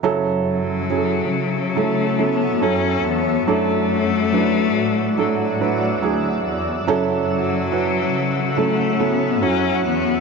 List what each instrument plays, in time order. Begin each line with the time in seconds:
0.03 cello section F#2, felt piano C#3 F#3 C#4 E4 A4, ambient pad F#4 C#5 A5 E6
0.48 cello F#3
0.90 felt piano F#3 C#4 E4 G#4
0.97 felt piano A4
1.33 cello section C#3
1.76 felt piano F#3 C#4 E4 A4, cello A3
2.18 felt piano F#3 C#4 E4 A4, cello B3
2.61 cello section F#2, felt piano F#3 C#4 E4 A4, cello C#4
3.05 cello section E2, cello B3
3.47 cello section F#2, felt piano F#3 D4 E4 A4, cello A3, ambient pad D5 F#5 E6
4.33 felt piano F#3 D4 E4 B4
4.76 cello section A2
5.17 felt piano F#3 D4 E4 A4, cello F#3
5.60 felt piano F#3 D4 E4 B4
6.02 cello section D2, felt piano F#3 D4 E4 G#4
6.45 cello section E2
6.87 cello section F#2, felt piano C#3 F#3 C#4 E4 A4, ambient pad F#4 C#5
7.31 cello F#3
7.72 felt piano F#3 C#4 E4 B4
8.14 cello section C#3
8.56 felt piano F#3 C#4 E4 A4, cello A3
8.99 felt piano F#3 C#4 E4 A4, cello B3
9.41 cello section F#2, felt piano F#3 C#4 E4 F#4, cello C#4
9.84 cello section E2, cello B3